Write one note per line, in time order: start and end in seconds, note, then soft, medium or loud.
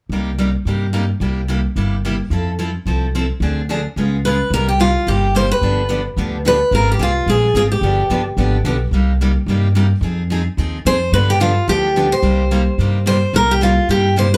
0.09 0.54 C2 medium
0.09 0.30 C3 soft
0.09 0.30 G3 soft
0.09 0.30 A#3 soft
0.09 0.30 D#4 soft
0.09 0.31 G4 medium
0.38 0.49 C3 medium
0.38 0.49 G3 medium
0.38 0.49 A#3 medium
0.38 0.49 D#4 medium
0.38 0.50 G4 medium
0.65 1.10 G2 medium
0.65 0.85 C3 soft
0.65 0.85 G3 medium
0.65 0.85 A#3 soft
0.65 0.86 D#4 medium
0.65 0.86 G4 medium
0.93 1.04 C3 medium
0.93 1.04 G3 medium
0.93 1.04 A#3 medium
0.93 1.04 D#4 medium
0.93 1.04 G4 medium
1.20 1.65 C2 medium
1.20 1.40 C3 soft
1.20 1.40 G3 medium
1.20 1.40 A#3 soft
1.20 1.40 E4 medium
1.20 1.40 G4 medium
1.48 1.59 C3 medium
1.48 1.59 G3 medium
1.48 1.60 A#3 medium
1.48 1.59 E4 medium
1.48 1.60 G4 medium
1.76 2.20 G1 medium
1.76 1.95 C3 medium
1.76 1.95 G3 medium
1.76 1.95 A#3 medium
1.76 1.95 E4 medium
1.76 1.96 G4 medium
2.05 2.15 C3 medium
2.05 2.15 G3 medium
2.05 2.15 A#3 medium
2.05 2.15 E4 medium
2.05 2.15 G4 medium
2.30 2.75 F2 medium
2.30 2.50 F3 medium
2.30 2.50 C4 soft
2.30 2.51 E4 soft
2.30 2.51 A4 medium
2.59 2.69 F3 medium
2.59 2.69 C4 medium
2.59 2.70 E4 medium
2.59 2.70 A4 medium
2.86 3.30 C2 medium
2.86 3.05 F3 medium
2.86 3.06 C4 medium
2.86 3.06 E4 medium
2.86 3.06 A4 medium
3.15 3.25 F3 medium
3.15 3.25 C4 medium
3.15 3.25 E4 medium
3.15 3.25 A4 medium
3.40 3.85 D2 medium
3.40 3.60 D3 soft
3.40 3.60 F3 medium
3.40 3.61 C4 medium
3.40 3.61 D4 medium
3.40 3.61 G#4 medium
3.69 3.79 D3 medium
3.69 3.80 F3 medium
3.69 3.80 C4 medium
3.69 3.80 D4 medium
3.69 3.80 G#4 medium
3.96 4.40 C#2 medium
3.96 4.16 C#3 soft
3.96 4.16 G#3 medium
3.96 4.16 B3 medium
3.96 4.16 F4 medium
3.96 4.16 G#4 medium
4.25 4.35 C#3 medium
4.25 4.36 G#3 medium
4.25 4.36 B3 medium
4.25 4.36 F4 medium
4.25 4.36 G#4 medium
4.25 4.53 B4 medium
4.50 4.95 C2 medium
4.50 4.71 C3 medium
4.50 4.71 G3 soft
4.50 4.71 A#3 soft
4.50 4.71 D#4 medium
4.50 4.71 G4 medium
4.50 4.67 A#4 medium
4.69 4.79 G4 medium
4.79 4.90 C3 medium
4.79 4.90 G3 medium
4.79 4.90 A#3 medium
4.79 4.90 D#4 medium
4.79 5.08 F4 medium
4.79 4.90 G4 medium
5.07 5.51 G1 medium
5.07 5.25 C3 medium
5.07 5.26 G3 medium
5.07 5.26 A#3 medium
5.07 5.26 D#4 medium
5.07 5.36 G4 medium
5.07 5.26 G4 medium
5.35 5.45 C3 medium
5.35 5.45 G3 medium
5.35 5.45 A#3 medium
5.35 5.45 D#4 medium
5.35 5.45 G4 medium
5.35 5.51 C5 medium
5.51 6.02 B4 medium
5.62 6.06 G1 medium
5.62 5.81 D3 medium
5.62 5.81 F3 soft
5.62 5.81 B3 medium
5.62 5.81 D4 medium
5.62 5.81 G4 medium
5.89 5.99 D3 medium
5.89 6.00 F3 medium
5.89 6.00 B3 medium
5.89 6.00 D4 medium
5.89 6.00 G4 medium
6.16 6.61 D2 medium
6.16 6.36 D3 medium
6.16 6.36 F3 medium
6.16 6.36 B3 medium
6.16 6.36 D4 medium
6.16 6.36 G4 medium
6.45 6.55 D3 medium
6.45 6.55 F3 medium
6.45 6.56 B3 medium
6.45 6.56 D4 medium
6.45 6.56 G4 medium
6.45 6.72 B4 medium
6.71 6.93 G#1 medium
6.71 6.91 G#3 medium
6.71 6.91 C4 medium
6.71 6.91 F4 medium
6.71 6.91 G#4 medium
6.71 6.89 A#4 medium
6.92 7.02 G4 medium
6.98 7.22 C2 medium
6.98 7.10 G#3 medium
6.98 7.10 C4 medium
6.98 7.10 F4 medium
6.98 7.10 G#4 medium
7.03 7.29 F4 medium
7.26 7.50 A#1 medium
7.26 7.46 G#3 medium
7.26 7.46 C4 medium
7.26 7.46 F4 medium
7.26 7.47 G#4 medium
7.26 7.56 G#4 medium
7.54 7.78 G#1 medium
7.54 7.65 G#3 medium
7.54 7.65 C4 medium
7.54 7.66 F4 medium
7.54 7.66 G#4 medium
7.54 7.62 G#4 medium
7.72 8.22 G4 medium
7.81 8.04 G1 medium
7.81 8.01 D3 medium
7.81 8.01 F3 medium
7.81 8.01 B3 medium
7.81 8.02 D4 medium
7.81 8.02 G4 medium
8.10 8.33 G1 medium
8.10 8.20 D3 medium
8.10 8.20 F3 medium
8.10 8.20 B3 medium
8.10 8.21 D4 medium
8.10 8.21 G4 medium
8.37 8.60 G#1 medium
8.37 8.56 D3 medium
8.37 8.56 F3 medium
8.37 8.56 B3 medium
8.37 8.56 D4 medium
8.37 8.57 G4 medium
8.64 8.88 B1 medium
8.64 8.75 D3 medium
8.64 8.75 F3 medium
8.64 8.76 B3 medium
8.64 8.76 D4 medium
8.64 8.76 G4 medium
8.91 9.36 C2 medium
8.91 9.11 C3 medium
8.91 9.12 G3 soft
8.91 9.12 A#3 medium
8.91 9.12 D#4 soft
8.91 9.12 G4 soft
9.21 9.31 C3 medium
9.21 9.31 G3 medium
9.21 9.31 A#3 medium
9.21 9.31 D#4 medium
9.21 9.31 G4 medium
9.46 9.91 G2 medium
9.46 9.66 C3 medium
9.46 9.67 G3 medium
9.46 9.67 A#3 medium
9.46 9.67 D#4 medium
9.46 9.67 G4 medium
9.75 9.85 C3 medium
9.75 9.86 G3 medium
9.75 9.86 A#3 medium
9.75 9.86 D#4 medium
9.75 9.86 G4 medium
10.01 10.46 F2 medium
10.01 10.21 F3 soft
10.01 10.21 C4 medium
10.01 10.22 D#4 medium
10.01 10.22 G#4 medium
10.30 10.40 F3 medium
10.30 10.41 C4 medium
10.30 10.41 D#4 medium
10.30 10.41 G#4 medium
10.57 10.81 D#2 medium
10.57 10.77 F3 medium
10.57 10.77 C4 medium
10.57 10.77 D#4 medium
10.57 10.77 G#4 medium
10.85 11.09 F2 medium
10.85 10.96 F3 medium
10.85 10.96 C4 medium
10.85 10.96 D#4 medium
10.85 10.96 G#4 medium
10.85 11.13 C5 medium
11.12 11.57 G2 medium
11.12 11.32 D3 medium
11.12 11.32 F3 medium
11.12 11.32 B3 medium
11.12 11.32 D4 medium
11.12 11.32 G4 medium
11.12 11.29 B4 medium
11.30 11.40 G4 medium
11.40 11.50 D3 medium
11.40 11.51 F3 medium
11.40 11.51 B3 medium
11.40 11.51 D4 medium
11.40 11.69 F4 medium
11.40 11.51 G4 medium
11.68 12.12 D2 medium
11.68 11.86 D3 medium
11.68 11.86 F3 medium
11.68 11.87 B3 medium
11.68 11.87 D4 medium
11.68 12.13 G4 medium
11.68 11.87 G4 medium
11.96 12.06 D3 medium
11.96 12.06 F3 medium
11.96 12.07 B3 medium
11.96 12.07 D4 medium
11.96 12.07 G4 medium
12.12 13.02 C5 medium
12.22 12.67 C2 medium
12.22 12.41 C3 medium
12.22 12.42 G3 soft
12.22 12.42 A#3 medium
12.22 12.42 D#4 medium
12.22 12.42 G4 medium
12.51 12.61 C3 medium
12.51 12.61 G3 medium
12.51 12.61 A#3 medium
12.51 12.62 D#4 medium
12.51 12.62 G4 medium
12.78 13.22 G2 medium
12.78 12.97 C3 medium
12.78 12.98 G3 medium
12.78 12.98 A#3 medium
12.78 12.98 D#4 medium
12.78 12.98 G4 medium
13.06 13.16 C3 medium
13.06 13.17 G3 medium
13.06 13.17 A#3 medium
13.06 13.17 D#4 medium
13.06 13.17 G4 medium
13.06 13.32 C5 medium
13.33 13.77 C2 medium
13.33 13.52 C3 soft
13.33 13.52 G3 medium
13.33 13.52 A#3 medium
13.33 13.52 D#4 medium
13.33 13.53 G4 medium
13.33 13.51 A#4 medium
13.51 13.62 G4 medium
13.61 13.71 C3 medium
13.61 13.71 G3 medium
13.61 13.72 A#3 medium
13.61 13.72 D#4 medium
13.61 13.90 F4 medium
13.61 13.72 G4 medium
13.88 14.32 G2 medium
13.88 14.07 C3 medium
13.88 14.07 G3 medium
13.88 14.08 A#3 medium
13.88 14.08 D#4 medium
13.88 14.08 G4 medium
13.88 14.15 G4 medium
14.16 14.26 C3 medium
14.16 14.27 G3 medium
14.16 14.27 A#3 medium
14.16 14.27 D#4 medium
14.16 14.27 G4 medium
14.16 14.33 C5 medium
14.34 14.37 B4 medium